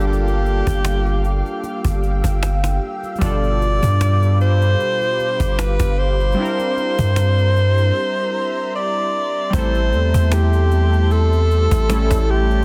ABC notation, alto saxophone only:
X:1
M:4/4
L:1/8
Q:"Swing 16ths" 1/4=76
K:Gdor
V:1 name="Alto saxophone"
G4 z4 | d3 c3 =B c- | c6 d2 | c2 G2 A3 G |]